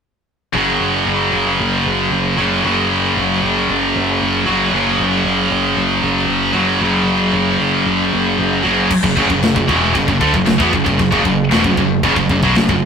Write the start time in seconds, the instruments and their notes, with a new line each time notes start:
0.53 picked electric bass F#1, distorted electric guitar F#2 C#3 F#3
0.81 picked electric bass F#1
1.07 picked electric bass F#1
1.33 picked electric bass F#1
1.60 picked electric bass F#1
1.86 picked electric bass F#1
2.12 picked electric bass F#1
2.37 picked electric bass F#1, distorted electric guitar F#2 C#3 F#3
2.62 picked electric bass F#1, distorted electric guitar F#2 C#3
2.66 distorted electric guitar F#3
3.17 picked electric bass F#1
3.43 picked electric bass F#1
3.69 picked electric bass F#1
3.96 picked electric bass F#1
4.22 picked electric bass F#1
4.45 picked electric bass F#1, distorted electric guitar C#3 F#3
4.49 distorted electric guitar F#2
4.71 picked electric bass F#1, distorted electric guitar F#2 C#3 F#3
5.00 picked electric bass F#1
5.25 picked electric bass F#1
5.51 picked electric bass F#1
5.77 picked electric bass F#1
6.02 picked electric bass F#1
6.28 picked electric bass F#1
6.53 picked electric bass F#1, distorted electric guitar C#3 F#3
6.57 distorted electric guitar F#2
6.80 picked electric bass F#1, distorted electric guitar F#2 C#3 F#3
7.33 picked electric bass F#1
7.60 picked electric bass F#1
7.86 picked electric bass F#1
8.13 picked electric bass F#1
8.39 picked electric bass F#1
8.63 picked electric bass F#1, distorted electric guitar F#2 C#3 F#3
8.91 kick, crash, china
9.03 picked electric bass F#1, distorted electric guitar F#2 C#3, kick
9.16 picked electric bass F#1, distorted electric guitar F#2 C#3, kick
9.30 picked electric bass F#1, distorted electric guitar F#2 C#3, kick
9.42 picked electric bass F#1, distorted electric guitar F#2 C#3, snare, china
9.55 picked electric bass F#1, distorted electric guitar F#2 C#3, kick
9.67 picked electric bass E1, distorted electric guitar E2 B2 E3, kick
9.94 picked electric bass F#1, distorted electric guitar F#2 C#3, kick, china
10.07 picked electric bass F#1, distorted electric guitar F#2 C#3, kick
10.20 picked electric bass D2, distorted electric guitar D3 A3, kick
10.33 picked electric bass F#1, distorted electric guitar F#2 C#3, kick
10.45 picked electric bass F#1, distorted electric guitar F#2 C#3, snare, china
10.58 picked electric bass E2, distorted electric guitar E3 B3, kick
10.72 picked electric bass F#1, distorted electric guitar F#2 C#3, kick
10.85 picked electric bass F#1, distorted electric guitar F#2 C#3, kick
10.98 picked electric bass F#1, distorted electric guitar F#2 C#3, kick, china
11.11 picked electric bass F#1, distorted electric guitar F#2 C#3, kick
11.25 picked electric bass F#1, distorted electric guitar F#2 C#3, kick
11.51 picked electric bass E1, distorted electric guitar E2 B2, snare, china
11.64 picked electric bass F#1, distorted electric guitar F#2 C#3, kick
11.77 picked electric bass F#1, distorted electric guitar F#2 C#3, kick
12.03 picked electric bass F#1, distorted electric guitar F#2 C#3, kick, china
12.16 picked electric bass F#1, distorted electric guitar F#2 C#3, kick
12.29 picked electric bass F#1, distorted electric guitar F#2 C#3, kick
12.43 picked electric bass B1, distorted electric guitar B2 F#3, kick
12.54 picked electric bass F#1, distorted electric guitar F#2 C#3, snare, china
12.69 picked electric bass F#1, distorted electric guitar F#2 C#3, kick